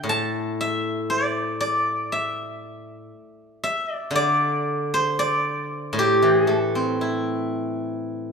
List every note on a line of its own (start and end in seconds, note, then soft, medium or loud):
0.00 3.09 A2 medium
0.00 0.60 E5 medium
0.00 1.14 G5 medium
0.09 1.54 A5 loud
0.61 2.12 E5 medium
1.10 1.60 D5 medium
1.61 3.45 D5 loud
2.12 3.63 E5 medium
3.64 3.94 E5 loud
3.94 4.16 D5 loud
4.11 5.93 D3 medium
4.16 5.19 D5 loud
4.94 6.92 C5 loud
5.19 7.04 D5 loud
5.93 8.32 A2 medium
5.99 6.33 G4 loud
6.22 8.32 E3 medium
6.33 6.53 G#4 loud
6.47 8.32 A3 medium
6.53 8.18 A4 loud
6.75 8.32 C4 medium
7.01 8.32 E4 medium